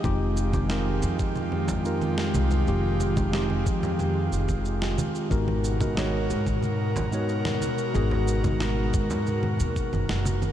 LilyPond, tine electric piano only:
\new Staff \with { instrumentName = "Tine electric piano" } { \time 4/4 \key f \minor \tempo 4 = 91 <aes c' ees' f' g'>8. <aes c' ees' f' g'>16 <aes c' ees' f' bes'>4.~ <aes c' ees' f' bes'>16 <aes c' ees' f' bes'>4~ <aes c' ees' f' bes'>16 | <aes c' ees' f' g'>8. <aes c' ees' f' g'>16 <aes c' ees' f' g'>2. | <aes ces' ees' ges' bes'>8. <aes ces' ees' ges' bes'>16 <aes ces' ees' ges' des''>4.~ <aes ces' ees' ges' des''>16 <aes ces' ees' ges' des''>4~ <aes ces' ees' ges' des''>16 | <aes ces' ees' ges' aes'>8. <aes ces' ees' ges' bes'>16 <aes ces' ees' ges' bes'>2. | }